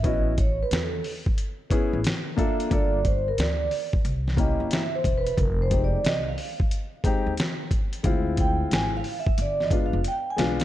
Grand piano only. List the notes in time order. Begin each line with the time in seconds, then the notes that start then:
0.03 B3 C#4 E4 F#4
1.70 B3 C#4 E4 G#4
2.37 A#3 D4 F4 A4
2.70 A#3 D4 F4 A4
4.37 A#3 C#4 E4 G4
5.70 G#3 C4 D#4 G4
7.04 G#3 C4 D#4 G4
8.03 G#3 C4 E4 F4
9.70 G#3 B3 D4 F4
10.36 G#3 B3 D4 F4